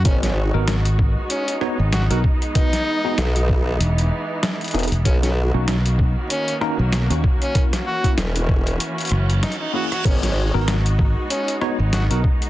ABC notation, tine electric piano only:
X:1
M:4/4
L:1/16
Q:"Swing 16ths" 1/4=96
K:G#m
V:1 name="Tine electric piano"
[B,DFA] z2 [B,DFA] z6 [B,DFc] z2 [B,DFA] z2 | [B,DFB] z2 [B,DFG] z8 z2 [B,DFG] z | [A,CDF] z2 [A,CDF] z6 [A,CDA] z2 [A,CDF] z2 | [A,CEA] z2 [A,CEF] z8 z2 [A,CEG] z |
[B,DFA] z2 [B,DFA] z6 [B,DFc] z2 [B,DFA] z2 |]